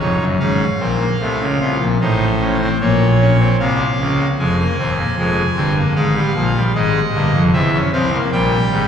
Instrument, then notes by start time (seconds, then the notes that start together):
pipe organ
0.00 F1 F2 D#4 C#5
0.20 F#1 F#2
0.40 G#1 G#2 C#4 F5
0.80 A#1 A#2 C4
1.00 A#3
1.20 C2 C3 A3
1.40 C#2 C#3
1.60 C2 C3 F4
1.80 A#1 A#2
2.00 A1 A2 D#4 C5
2.41 C#4
2.61 C4
2.81 A#1 A#2 A#3 C#5
3.20 C#4
3.40 C4
3.59 C2 C3 A#3 F5
3.99 C#2 C#3
4.39 F1 F2 G#3 G#5
4.59 A#3
4.79 D#1 D#2 C4
4.99 A#3
5.18 F1 F2 G#3
5.56 G1 G2 C4
5.76 A#3
5.95 G#1 G#2 G#3 F5
6.15 G3
6.35 A#1 A#2 F3
6.56 G3
6.75 G#1 G#2 G#3 D#5
7.14 G1 G2 A#3
7.34 F1 F2
7.53 E1 E2 C4 E5
7.74 C#4
7.93 C2 C3 C4 F5
8.13 A#3
8.32 A#1 A#2 G3 G5
8.71 G#1 G#2